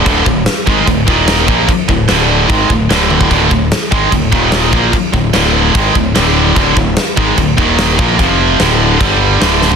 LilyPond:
<<
  \new Staff \with { instrumentName = "Distorted electric guitar" } { \clef bass \time 4/4 \key d \phrygian \tempo 4 = 148 <d, a, d>8 <d, a,>8 r8 <gis, ees gis>8 <d, a,>8 <ees, bes, ees>4 <bes, f bes>8 | r8 <d, a,>8 <d, a, d>4 <gis, ees gis>8 <d, a,>8 <d, a, d>4 | <d, a, d>8 <d, a,>8 r8 <gis, ees gis>8 <d, a,>8 <ees, bes, ees>4 <bes, f bes>8 | r8 <d, a,>8 <d, a, d>4 <gis, ees gis>8 <d, a,>8 <d, a, d>4 |
<d, a, d>8 <d, a,>8 r8 <gis, ees gis>8 <d, a,>8 <ees, bes, ees>4 <bes, f bes>8 | <f, c f>4 <d, a, d>4 <g, d g>4 <d, a, d>4 | }
  \new Staff \with { instrumentName = "Distorted electric guitar" } { \clef bass \time 4/4 \key d \phrygian <d, a, d>8 <d, a,>8 r8 <gis, ees gis>8 <d, a,>8 <ees, bes, ees>4 <bes, f bes>8 | r8 <d, a,>8 <d, a, d>4 <gis, ees gis>8 <d, a,>8 <d, a, d>4 | <d, a, d>8 <d, a,>8 r8 <gis, ees gis>8 <d, a,>8 <ees, bes, ees>4 <bes, f bes>8 | r8 <d, a,>8 <d, a, d>4 <gis, ees gis>8 <d, a,>8 <d, a, d>4 |
<d, a, d>8 <d, a,>8 r8 <gis, ees gis>8 <d, a,>8 <ees, bes, ees>4 <bes, f bes>8 | <f, c f>4 <d, a, d>4 <g, d g>4 <d, a, d>4 | }
  \new Staff \with { instrumentName = "Distorted electric guitar" } { \clef bass \time 4/4 \key d \phrygian <d, a, d>8 <d, a,>8 r8 <gis, ees gis>8 <d, a,>8 <ees, bes, ees>4 <bes, f bes>8 | r8 <d, a,>8 <d, a, d>4 <gis, ees gis>8 <d, a,>8 <d, a, d>4 | <d, a, d>8 <d, a,>8 r8 <gis, ees gis>8 <d, a,>8 <ees, bes, ees>4 <bes, f bes>8 | r8 <d, a,>8 <d, a, d>4 <gis, ees gis>8 <d, a,>8 <d, a, d>4 |
<d, a, d>8 <d, a,>8 r8 <gis, ees gis>8 <d, a,>8 <ees, bes, ees>4 <bes, f bes>8 | <f, c f>4 <d, a, d>4 <g, d g>4 <d, a, d>4 | }
  \new Staff \with { instrumentName = "Fingered electric bass" } { \clef bass \time 4/4 \key d \phrygian d,,8 d,,8 r8 gis,,8 d,,8 ees,,4 bes,,8 | r8 d,,8 d,,4 gis,,8 d,,8 d,,4 | d,,8 d,,8 r8 gis,,8 d,,8 ees,,4 bes,,8 | r8 d,,8 d,,4 gis,,8 d,,8 d,,4 |
d,,8 d,,8 r8 gis,,8 d,,8 ees,,4 bes,,8 | f,,4 d,,4 g,,4 d,,4 | }
  \new DrumStaff \with { instrumentName = "Drums" } \drummode { \time 4/4 <cymc bd>8 bd8 <cymc sn>8 bd8 <cymc bd>8 bd8 <cymc sn>8 bd8 | <cymc bd>8 bd8 <cymc sn>4 <cymc bd>8 bd8 <cymc sn>8 tommh16 bd16 | <cymc bd>8 bd8 <cymc sn>8 bd8 <cymc bd>8 bd8 <cymc sn>8 bd8 | <cymc bd>8 bd8 <cymc sn>4 <cymc bd>8 bd8 <cymc sn>4 |
<cymc bd>8 bd8 <cymc sn>8 bd8 <cymc bd>8 bd8 <cymc sn>8 bd8 | <cymc bd>4 <cymc sn>4 <cymc bd>4 <cymc sn>8 sn16 tomfh16 | }
>>